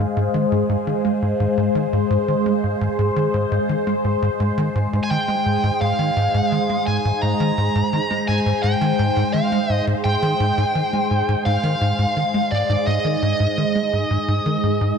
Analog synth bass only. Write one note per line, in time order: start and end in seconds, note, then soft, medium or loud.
0.17 0.28 G#2 loud
0.34 0.46 D#3 loud
0.52 0.64 G#2 loud
0.69 0.77 G#2 loud
0.87 0.94 D#3 medium
1.05 1.12 G#3 medium
1.22 1.34 G#2 medium
1.40 1.47 G#2 loud
1.57 1.69 G#2 loud
1.75 1.87 D#3 medium
1.93 2.05 G#2 loud
2.10 2.18 G#2 loud
2.28 2.35 D#3 medium
2.46 2.53 G#3 medium
2.64 2.75 G#2 medium
2.81 2.88 G#2 loud
2.99 3.11 G#2 loud
3.16 3.28 D#3 medium
3.34 3.46 G#2 loud
3.52 3.59 G#2 loud
3.69 3.76 D#3 medium
3.87 3.94 G#3 medium
4.04 4.16 G#2 medium
4.22 4.29 G#2 loud
4.40 4.52 G#2 loud
4.58 4.69 D#3 loud
4.75 4.87 G#2 loud
4.93 5.00 G#2 loud
5.11 5.18 D#3 medium
5.28 5.35 G#3 medium
5.46 5.58 G#2 medium
5.64 5.71 G#2 loud
5.81 5.93 G#2 loud
5.99 6.11 D#3 loud
6.17 6.28 G#2 loud
6.34 6.41 G#2 loud
6.52 6.59 D#3 medium
6.70 6.77 G#3 medium
6.87 6.99 G#2 medium
7.05 7.12 G#2 loud
7.22 7.34 G#2 loud
7.40 7.52 D#3 loud
7.58 7.70 G#2 loud
7.75 7.83 G#2 loud
7.93 8.00 D#3 medium
8.11 8.18 G#3 medium
8.28 8.40 G#2 medium
8.46 8.53 G#2 loud
8.64 8.76 G#2 loud
8.81 8.93 D#3 loud
8.99 9.11 G#2 loud
9.17 9.24 G#2 loud
9.34 9.41 D#3 medium
9.52 9.59 G#3 medium
9.70 9.81 G#2 medium
9.87 9.94 G#2 loud
10.05 10.17 G#2 loud
10.22 10.34 D#3 loud
10.40 10.52 G#2 loud
10.58 10.65 G#2 loud
10.75 10.82 D#3 medium
10.93 11.00 G#3 medium
11.11 11.22 G#2 medium
11.28 11.36 G#2 loud
11.46 11.58 G#2 loud
11.63 11.75 D#3 loud
11.81 11.93 G#2 loud
11.99 12.06 G#2 loud
12.17 12.24 D#3 medium
12.34 12.41 G#3 medium
12.52 12.64 G#2 medium
12.69 12.77 G#2 loud
12.87 12.99 G#2 loud
13.05 13.17 D#3 loud
13.22 13.34 G#2 loud
13.40 13.47 G#2 loud
13.58 13.65 D#3 medium
13.75 13.82 G#3 medium
13.93 14.05 G#2 medium
14.11 14.18 G#2 loud
14.28 14.40 G#2 loud
14.46 14.58 D#3 loud
14.63 14.80 G#2 loud
14.81 14.93 G#2 loud